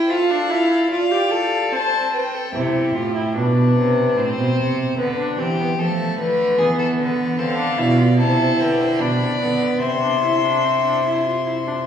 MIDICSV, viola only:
0, 0, Header, 1, 2, 480
1, 0, Start_track
1, 0, Tempo, 813008
1, 63, Time_signature, 3, 2, 24, 8
1, 2943, Tempo, 803213
1, 5343, Tempo, 824176
1, 7012, End_track
2, 0, Start_track
2, 0, Title_t, "Viola"
2, 0, Program_c, 0, 41
2, 0, Note_on_c, 0, 64, 82
2, 58, Note_on_c, 0, 65, 78
2, 67, Note_off_c, 0, 64, 0
2, 179, Note_on_c, 0, 62, 78
2, 188, Note_off_c, 0, 65, 0
2, 296, Note_on_c, 0, 64, 78
2, 305, Note_off_c, 0, 62, 0
2, 532, Note_off_c, 0, 64, 0
2, 536, Note_on_c, 0, 65, 69
2, 655, Note_on_c, 0, 67, 66
2, 664, Note_off_c, 0, 65, 0
2, 773, Note_on_c, 0, 69, 73
2, 782, Note_off_c, 0, 67, 0
2, 1016, Note_on_c, 0, 60, 67
2, 1025, Note_off_c, 0, 69, 0
2, 1498, Note_off_c, 0, 60, 0
2, 1501, Note_on_c, 0, 64, 57
2, 1739, Note_on_c, 0, 65, 56
2, 1748, Note_off_c, 0, 64, 0
2, 1858, Note_off_c, 0, 65, 0
2, 1862, Note_on_c, 0, 64, 55
2, 1978, Note_off_c, 0, 64, 0
2, 1982, Note_on_c, 0, 62, 59
2, 2462, Note_on_c, 0, 60, 60
2, 2471, Note_off_c, 0, 62, 0
2, 2937, Note_off_c, 0, 60, 0
2, 2941, Note_on_c, 0, 59, 66
2, 2988, Note_off_c, 0, 59, 0
2, 3059, Note_on_c, 0, 62, 65
2, 3182, Note_on_c, 0, 60, 61
2, 3191, Note_off_c, 0, 62, 0
2, 3304, Note_off_c, 0, 60, 0
2, 3306, Note_on_c, 0, 59, 64
2, 3354, Note_off_c, 0, 59, 0
2, 3425, Note_on_c, 0, 57, 63
2, 3894, Note_off_c, 0, 57, 0
2, 3902, Note_on_c, 0, 59, 62
2, 4374, Note_on_c, 0, 60, 68
2, 4383, Note_off_c, 0, 59, 0
2, 4489, Note_off_c, 0, 60, 0
2, 4492, Note_on_c, 0, 62, 68
2, 4615, Note_on_c, 0, 64, 68
2, 4624, Note_off_c, 0, 62, 0
2, 4731, Note_off_c, 0, 64, 0
2, 4735, Note_on_c, 0, 65, 66
2, 4782, Note_off_c, 0, 65, 0
2, 4853, Note_on_c, 0, 64, 63
2, 5342, Note_on_c, 0, 62, 58
2, 5350, Note_off_c, 0, 64, 0
2, 5578, Note_off_c, 0, 62, 0
2, 5581, Note_on_c, 0, 59, 56
2, 5817, Note_on_c, 0, 60, 56
2, 5826, Note_off_c, 0, 59, 0
2, 5933, Note_off_c, 0, 60, 0
2, 5937, Note_on_c, 0, 62, 52
2, 6057, Note_off_c, 0, 62, 0
2, 6060, Note_on_c, 0, 64, 57
2, 6179, Note_off_c, 0, 64, 0
2, 6184, Note_on_c, 0, 62, 47
2, 6300, Note_on_c, 0, 60, 45
2, 6308, Note_off_c, 0, 62, 0
2, 6421, Note_off_c, 0, 60, 0
2, 6423, Note_on_c, 0, 62, 50
2, 6537, Note_off_c, 0, 62, 0
2, 6541, Note_on_c, 0, 64, 53
2, 6656, Note_off_c, 0, 64, 0
2, 6660, Note_on_c, 0, 65, 46
2, 6772, Note_off_c, 0, 65, 0
2, 6775, Note_on_c, 0, 64, 46
2, 6822, Note_off_c, 0, 64, 0
2, 6898, Note_on_c, 0, 62, 47
2, 6945, Note_off_c, 0, 62, 0
2, 7012, End_track
0, 0, End_of_file